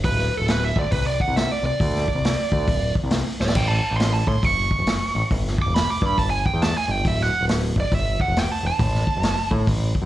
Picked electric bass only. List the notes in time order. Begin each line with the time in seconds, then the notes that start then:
0.04 D1
0.40 D1
0.76 D2
0.92 C2
1.28 C2
1.63 C2
1.80 D2
2.15 C2
2.52 D2
2.67 D1
3.04 C2
3.40 D1
3.56 A1
3.91 A1
4.27 A2
4.43 F#1
4.79 F#1
5.15 A1
5.31 G1
5.66 E1
6.02 G2
6.18 G1
6.54 E2
6.88 G1
7.05 D1
7.41 D1
7.77 F#1
7.92 G1
8.28 E1
8.63 E1
8.79 A1
9.17 F#1
9.51 A2
9.68 A1
10.02 F#2